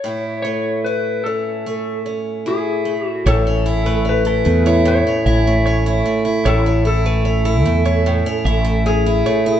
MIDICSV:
0, 0, Header, 1, 5, 480
1, 0, Start_track
1, 0, Key_signature, 3, "major"
1, 0, Tempo, 801068
1, 28, Time_signature, 4, 2, 24, 8
1, 5752, End_track
2, 0, Start_track
2, 0, Title_t, "Clean electric guitar"
2, 0, Program_c, 0, 27
2, 1958, Note_on_c, 0, 73, 103
2, 2183, Note_off_c, 0, 73, 0
2, 2315, Note_on_c, 0, 71, 68
2, 2427, Note_off_c, 0, 71, 0
2, 2556, Note_on_c, 0, 69, 65
2, 2668, Note_off_c, 0, 69, 0
2, 2797, Note_on_c, 0, 73, 80
2, 3021, Note_off_c, 0, 73, 0
2, 3152, Note_on_c, 0, 76, 69
2, 3265, Note_off_c, 0, 76, 0
2, 3390, Note_on_c, 0, 73, 78
2, 3728, Note_off_c, 0, 73, 0
2, 3867, Note_on_c, 0, 73, 97
2, 4095, Note_off_c, 0, 73, 0
2, 4231, Note_on_c, 0, 71, 75
2, 4344, Note_off_c, 0, 71, 0
2, 4467, Note_on_c, 0, 69, 71
2, 4581, Note_off_c, 0, 69, 0
2, 4708, Note_on_c, 0, 73, 77
2, 4936, Note_off_c, 0, 73, 0
2, 5067, Note_on_c, 0, 76, 84
2, 5181, Note_off_c, 0, 76, 0
2, 5549, Note_on_c, 0, 73, 76
2, 5662, Note_off_c, 0, 73, 0
2, 5752, End_track
3, 0, Start_track
3, 0, Title_t, "Electric slide guitar"
3, 0, Program_c, 1, 29
3, 0, Note_on_c, 1, 73, 72
3, 247, Note_off_c, 1, 73, 0
3, 254, Note_on_c, 1, 73, 79
3, 484, Note_off_c, 1, 73, 0
3, 506, Note_on_c, 1, 71, 59
3, 741, Note_on_c, 1, 69, 59
3, 755, Note_off_c, 1, 71, 0
3, 1202, Note_off_c, 1, 69, 0
3, 1484, Note_on_c, 1, 68, 61
3, 1837, Note_off_c, 1, 68, 0
3, 1837, Note_on_c, 1, 66, 61
3, 1964, Note_off_c, 1, 66, 0
3, 1967, Note_on_c, 1, 69, 84
3, 2449, Note_off_c, 1, 69, 0
3, 2452, Note_on_c, 1, 71, 86
3, 2922, Note_on_c, 1, 73, 89
3, 2935, Note_off_c, 1, 71, 0
3, 3611, Note_off_c, 1, 73, 0
3, 3876, Note_on_c, 1, 69, 83
3, 4095, Note_off_c, 1, 69, 0
3, 4117, Note_on_c, 1, 69, 84
3, 5310, Note_off_c, 1, 69, 0
3, 5313, Note_on_c, 1, 68, 78
3, 5752, Note_off_c, 1, 68, 0
3, 5752, End_track
4, 0, Start_track
4, 0, Title_t, "Steel-string acoustic guitar"
4, 0, Program_c, 2, 25
4, 23, Note_on_c, 2, 45, 57
4, 33, Note_on_c, 2, 64, 46
4, 267, Note_on_c, 2, 57, 47
4, 514, Note_off_c, 2, 64, 0
4, 516, Note_on_c, 2, 64, 49
4, 756, Note_on_c, 2, 61, 47
4, 995, Note_off_c, 2, 57, 0
4, 997, Note_on_c, 2, 57, 49
4, 1230, Note_off_c, 2, 61, 0
4, 1233, Note_on_c, 2, 61, 52
4, 1471, Note_off_c, 2, 64, 0
4, 1474, Note_on_c, 2, 64, 54
4, 1707, Note_off_c, 2, 57, 0
4, 1709, Note_on_c, 2, 57, 47
4, 1949, Note_off_c, 2, 45, 0
4, 1957, Note_on_c, 2, 45, 72
4, 2076, Note_off_c, 2, 61, 0
4, 2078, Note_on_c, 2, 61, 58
4, 2189, Note_off_c, 2, 64, 0
4, 2192, Note_on_c, 2, 64, 64
4, 2311, Note_off_c, 2, 57, 0
4, 2313, Note_on_c, 2, 57, 59
4, 2419, Note_off_c, 2, 61, 0
4, 2426, Note_on_c, 2, 61, 52
4, 2539, Note_off_c, 2, 64, 0
4, 2546, Note_on_c, 2, 64, 69
4, 2659, Note_off_c, 2, 57, 0
4, 2666, Note_on_c, 2, 57, 58
4, 2785, Note_off_c, 2, 64, 0
4, 2792, Note_on_c, 2, 64, 68
4, 2901, Note_off_c, 2, 45, 0
4, 2909, Note_on_c, 2, 45, 78
4, 3028, Note_off_c, 2, 61, 0
4, 3037, Note_on_c, 2, 61, 56
4, 3147, Note_off_c, 2, 64, 0
4, 3154, Note_on_c, 2, 64, 63
4, 3267, Note_off_c, 2, 57, 0
4, 3279, Note_on_c, 2, 57, 62
4, 3388, Note_off_c, 2, 61, 0
4, 3395, Note_on_c, 2, 61, 59
4, 3505, Note_off_c, 2, 64, 0
4, 3512, Note_on_c, 2, 64, 65
4, 3621, Note_off_c, 2, 57, 0
4, 3629, Note_on_c, 2, 57, 56
4, 3737, Note_off_c, 2, 64, 0
4, 3744, Note_on_c, 2, 64, 58
4, 3862, Note_off_c, 2, 45, 0
4, 3869, Note_on_c, 2, 45, 78
4, 3984, Note_off_c, 2, 61, 0
4, 3991, Note_on_c, 2, 61, 59
4, 4097, Note_off_c, 2, 64, 0
4, 4105, Note_on_c, 2, 64, 66
4, 4222, Note_off_c, 2, 57, 0
4, 4229, Note_on_c, 2, 57, 57
4, 4336, Note_off_c, 2, 61, 0
4, 4343, Note_on_c, 2, 61, 59
4, 4458, Note_off_c, 2, 64, 0
4, 4465, Note_on_c, 2, 64, 71
4, 4580, Note_off_c, 2, 57, 0
4, 4587, Note_on_c, 2, 57, 60
4, 4699, Note_off_c, 2, 64, 0
4, 4706, Note_on_c, 2, 64, 67
4, 4823, Note_off_c, 2, 45, 0
4, 4831, Note_on_c, 2, 45, 80
4, 4943, Note_off_c, 2, 61, 0
4, 4951, Note_on_c, 2, 61, 62
4, 5064, Note_off_c, 2, 64, 0
4, 5072, Note_on_c, 2, 64, 65
4, 5173, Note_off_c, 2, 57, 0
4, 5180, Note_on_c, 2, 57, 59
4, 5301, Note_off_c, 2, 61, 0
4, 5308, Note_on_c, 2, 61, 58
4, 5424, Note_off_c, 2, 64, 0
4, 5431, Note_on_c, 2, 64, 65
4, 5542, Note_off_c, 2, 57, 0
4, 5549, Note_on_c, 2, 57, 60
4, 5662, Note_off_c, 2, 64, 0
4, 5669, Note_on_c, 2, 64, 63
4, 5752, Note_off_c, 2, 45, 0
4, 5752, Note_off_c, 2, 57, 0
4, 5752, Note_off_c, 2, 61, 0
4, 5752, Note_off_c, 2, 64, 0
4, 5752, End_track
5, 0, Start_track
5, 0, Title_t, "Fretless electric bass"
5, 0, Program_c, 3, 35
5, 1954, Note_on_c, 3, 33, 101
5, 2648, Note_off_c, 3, 33, 0
5, 2673, Note_on_c, 3, 40, 91
5, 3007, Note_off_c, 3, 40, 0
5, 3150, Note_on_c, 3, 33, 85
5, 3606, Note_off_c, 3, 33, 0
5, 3867, Note_on_c, 3, 33, 102
5, 4582, Note_off_c, 3, 33, 0
5, 4582, Note_on_c, 3, 40, 94
5, 4920, Note_off_c, 3, 40, 0
5, 5064, Note_on_c, 3, 33, 89
5, 5521, Note_off_c, 3, 33, 0
5, 5752, End_track
0, 0, End_of_file